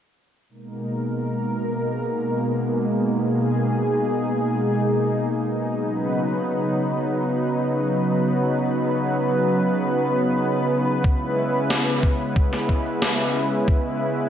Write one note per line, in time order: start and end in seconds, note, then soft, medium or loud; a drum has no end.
0.49 5.73 B2 medium
0.49 5.73 G#3 medium
0.49 5.73 A#3 medium
0.49 11.00 D#4 medium
0.49 3.10 A#4 medium
3.13 5.74 G#4 medium
5.77 14.29 C#3 medium
5.77 11.00 F#3 medium
5.77 14.29 B3 medium
5.77 14.29 B4 medium
11.04 14.29 G#3 medium
11.04 14.29 E4 medium
11.04 kick loud
11.70 snare loud
12.03 kick loud
12.36 kick loud
12.53 snare soft
12.69 kick medium
13.02 snare loud
13.68 kick loud